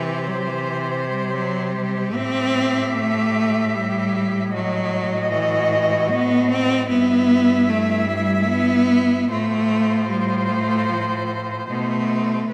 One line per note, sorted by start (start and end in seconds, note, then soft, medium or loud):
0.00 2.10 C3 medium
0.00 0.28 E3 loud
0.00 2.10 G4 medium
0.00 2.11 C5 medium
0.27 0.49 F#3 medium
0.47 1.08 E3 medium
1.08 1.29 G3 medium
1.28 1.73 F#3 loud
1.72 2.16 G3 medium
2.14 6.90 A2 medium
2.14 2.97 C4 loud
2.14 4.49 G4 medium
2.14 4.50 E5 medium
2.95 3.76 A3 loud
3.74 4.53 G3 loud
4.53 5.33 F#3 loud
4.53 6.85 F#4 medium
4.53 6.85 D#5 medium
5.31 6.11 E3 loud
6.10 6.50 B3 loud
6.49 6.88 C4 loud
6.89 9.30 G2 medium
6.89 7.71 B3 loud
6.89 9.27 E4 medium
6.89 9.28 E5 medium
7.69 8.11 A3 loud
8.09 8.50 G3 loud
8.49 9.30 B3 loud
9.30 11.66 A2 medium
9.30 10.10 A3 loud
9.30 11.66 F4 medium
9.30 12.47 C5 medium
10.09 10.51 G3 loud
10.49 10.91 A3 loud
10.89 11.30 F3 medium
11.69 12.49 B2 medium
11.69 12.53 A3 loud
11.69 12.47 D#4 medium
12.50 12.53 B4 medium